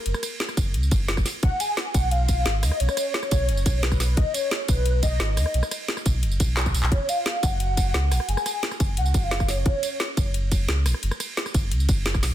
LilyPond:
<<
  \new Staff \with { instrumentName = "Soft synth lead" } { \time 4/4 \key fis \major \tempo 4 = 175 ais'8 r2. r8 | fis''8 gis''4 fis''8 eis''4. dis''8 | cis''4. cis''4. b'4 | dis''8 cis''4 b'4 dis''4.~ |
dis''8 r2. r8 | cis''8 eis''4 fis''2~ fis''8 | gis''4. r8 fis''8. eis''8. cis''8~ | cis''2~ cis''8 r4. |
r1 | }
  \new Staff \with { instrumentName = "Sub bass" } { \clef bass \time 4/4 \key fis \major fis,,16 r4 r16 fis,,8 cis,8 fis,,4 r8 | b,,16 r4 r16 b,,4. gis,,8 dis,16 r16 | b,,16 r4 r16 b,,8 fis,,8 b,,4. | b,,16 r4 r16 b,,4. gis,,8 dis,16 r16 |
b,,16 r4 r16 b,,8 fis,,8 b,,4 b,,16 b,,16 | fis,,16 r4 r16 fis,,4. cis,8 ais,,16 r16 | fis,,16 r4 r16 fis,,8 cis,8 fis,,4. | fis,,16 r4 r16 fis,,4. cis,8 ais,,16 r16 |
fis,,16 r4 r16 fis,,8 cis,8 fis,,4 b,,16 r16 | }
  \new DrumStaff \with { instrumentName = "Drums" } \drummode { \time 4/4 hh16 <ss tamb>16 <hh cymr ss tamb>8 <hh sn>16 <ss tamb>16 <hh bd cymr tamb>8 hh16 tamb16 <hh bd cymr tamb>8 <hh sn>16 <bd ss tamb>16 <hho cymr sn tamb>8 | <hh bd>8 <hh cymr tamb>8 <hh sn>8 <hh bd cymr tamb>8 hh8 <hh bd cymr tamb>8 <hh sn>8 <hho cymr ss tamb>16 ss16 | hh16 <ss tamb>16 <hh cymr ss tamb>8 <hh sn>16 <ss tamb>16 <hh bd cymr tamb>8 hh16 tamb16 <hh bd cymr tamb>8 <hh sn>16 <bd ss tamb>16 <hho cymr sn tamb>8 | <hh bd>8 <hh cymr tamb>8 <hh sn>8 <hh bd cymr tamb>8 hh8 <hh bd cymr tamb>8 <hh sn>8 <hho cymr ss tamb>16 ss16 |
hh16 <ss tamb>16 <hh cymr ss tamb>8 <hh sn>16 <ss tamb>16 <hh bd cymr tamb>8 hh16 tamb16 <hh bd cymr tamb>8 <hc hh sn>16 <bd tamb>16 <hho cymr tamb>16 hc16 | <hh bd>8 <hh cymr tamb>8 <hh sn>8 <hh bd cymr tamb>8 hh8 <hh bd cymr tamb>8 <hh sn>8 <hho cymr ss tamb>16 ss16 | hh16 <ss tamb>16 <hh cymr ss tamb>8 <hh sn>16 <ss tamb>16 <hh bd cymr tamb>8 hh16 tamb16 <hh bd cymr tamb>8 <hh sn>16 <bd ss tamb>16 <hho cymr sn tamb>8 | <hh bd>8 <hh cymr tamb>8 <hh sn>8 <hh bd cymr tamb>8 hh8 <hh bd cymr tamb>8 <hh sn>8 <hho cymr ss tamb>16 ss16 |
hh16 <ss tamb>16 <hh cymr ss tamb>8 <hh sn>16 <ss tamb>16 <hh bd cymr tamb>8 hh16 tamb16 <hh bd cymr tamb>8 <hh sn>16 <bd ss tamb>16 <hho cymr sn tamb>8 | }
>>